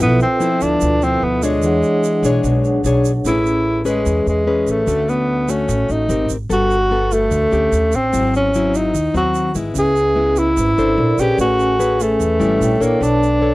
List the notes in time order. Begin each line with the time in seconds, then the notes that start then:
Already playing: E5
0.00 B1 F3 B3 E4 F4 A4 B4, shaker
0.20 C4, shaker
0.40 F3 B3 E4, shaker
0.61 D2 D4, shaker
0.81 D2 B2, shaker
1.02 F3 B3 C4 E4, shaker
1.22 D2 B3
1.43 G#3 D4 G#4 C#5, shaker
1.59 E2 D4 G#4, shaker
1.64 E3 C#5 F#5
1.83 shaker
2.04 shaker
2.22 B1 D4 G#4 C#5, shaker
2.43 B1 B2, shaker
2.63 D4 G#4 C#5 F#5, shaker
2.84 B1 D4 G#4 C#5, shaker
3.05 shaker
3.24 A1 A3 C#4 E4 G#4 B4, shaker
3.46 shaker
3.85 G#3 C#4 G#4 B4, shaker
4.06 E2 E3, shaker
4.26 E2 G#3, shaker
4.47 C#4 G#4 B4
4.66 A1 A3, shaker
4.87 D2 D3 A3 C#4 F#4, shaker
5.09 B3, shaker
5.48 A3 C#4 F#4, shaker
5.68 A1 A2, shaker
5.89 A1 D#4, shaker
6.09 G#1 C4 G4 A#4, shaker
6.29 G#1, shaker
6.50 G1 G3 B3 F#4 A4, shaker
6.71 shaker
6.91 B3 F#4 A4
7.12 A3, shaker
7.31 D2 D3, shaker
7.52 D2 C#4 G4, shaker
7.72 D#2, shaker
7.92 A1 C4, shaker
8.13 G#1 G#2 F#3 C4 E4, shaker
8.34 C#4, shaker
8.54 F#3 C4 E4, shaker
8.75 D#4, shaker
8.94 D#2 D#3, shaker
9.14 D#2 F#3 C4 F#4, shaker
9.35 shaker
9.55 G#1 G#3 B3 E4, shaker
9.74 C#2 C#3 C#4 G#4 B4, shaker
9.79 G#4 E5
9.96 shaker
10.15 G#3 B3 E4
10.36 E4, shaker
10.57 G#1 G#2, shaker
10.78 G#1 D4 A4 C5, shaker
10.97 A#1 A#4 D5
11.18 A#1 C#4 G4 G#4, shaker
11.22 B4
11.36 A1 A3 C#4 B4, shaker
11.41 F#4 G#5
11.60 shaker
11.79 C#4 G#4 B4, shaker
12.00 A3, shaker
12.19 E2 E3, shaker
12.40 G#1 G3 C#4 E4, shaker
12.59 A#1 E4 C#5 G5, shaker
12.80 A#1 A#3 D4 A4 C#5, shaker
13.00 B1 B3 D4 B4 C#5, shaker
13.06 A5
13.23 shaker
13.42 D4 A4 C#5